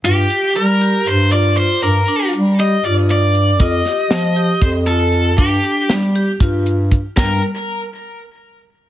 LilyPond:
<<
  \new Staff \with { instrumentName = "Lead electric guitar" } { \time 7/8 \key g \minor \tempo 4 = 118 g'4 bes'4 c''8 d''8 c''8 | bes'4 r8 ees''8 d''8 d''4 | ees''2 c''8 a'4 | g'4 r2 r8 |
bes'8 r2. | }
  \new Staff \with { instrumentName = "Vibraphone" } { \time 7/8 \key g \minor f'8 g'4 g'4 f'8 f'8 | d'8 d'4 g'8 f'4 r8 | f'8 g'4 g'4 f'8 f'8 | d'8 d'4 g'8 f'4 r8 |
g8 r2. | }
  \new Staff \with { instrumentName = "Bass clarinet" } { \clef bass \time 7/8 \key g \minor g,8 r8 g4 g,4. | g,8 r8 g4 g,4. | f,8 r8 f4 f,4. | g,8 r8 g4 g,4. |
g,8 r2. | }
  \new DrumStaff \with { instrumentName = "Drums" } \drummode { \time 7/8 hh8 hh8 hh8 hh8 hh8 hh8 hh8 | hh8 hh8 hh8 hh8 hh8 hh8 hh8 | <hh bd>8 <hh sn>8 <hh sn>8 hh8 <hh bd>8 hh8 hh8 | <hh bd>8 hh8 <hh sn>8 hh8 <hh bd>8 hh8 <hh bd>8 |
<cymc bd sn>4 r4 r4. | }
>>